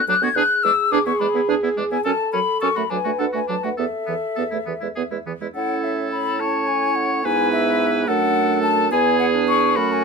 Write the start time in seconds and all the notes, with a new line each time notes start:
0.08 D2 F#3 D4 F#6
0.21 D2 B3 F#4 G#6
0.35 E2 D4 G#4 F#6
0.63 E2 G#3 D4 E6
0.91 E2 D4 G#4 D6
1.06 E2 B3 E4 C#6
1.20 E2 G#3 D4 B5
1.34 E2 B3 E4
1.48 E2 D4 G#4
1.63 E2 B3 E4
1.77 E2 G#3 D4
1.91 E2 B3 E4 G#5
2.04 F#2 C#4 A4 A5
2.33 F#2 F#3 C#4 B5
2.61 F#2 C#4 A4 C#6
2.75 F#2 A3 F#4 B5
2.90 D2 F#3 D4 B4 G#5
3.04 D2 A3 F#4
3.19 D2 D4 A4 F#5
3.33 D2 A3 F#4 G#5
3.48 D2 F#3 D4 A5
3.63 D2 A3 F#4 F#5
3.77 E2 B3 A4 E5
4.06 E2 E3 B3
4.36 E2 B3 A4
4.51 E2 A3 E4
4.66 E2 E3 B3
4.81 E2 G#3 E4
4.95 E2 B3 G#4
5.11 E2 G#3 E4
5.26 E2 E3 B3
5.41 E2 G#3 E4
5.55 A2 C#4 E4 A4 F#5
5.84 E5
6.12 B5
6.40 C#4 E4 C#5 A5
6.67 G#5
6.95 F#5
7.24 G#2 B3 E4 B4 G#5
7.52 E5
8.07 F#2 A3 D4 A4 F#5
8.63 A5
8.91 E2 B3 E4 G#4 G#5
9.19 F#5
9.34 D4
9.48 C#6
9.76 F#2 A3 C#4 F#4 B5
9.92 G#5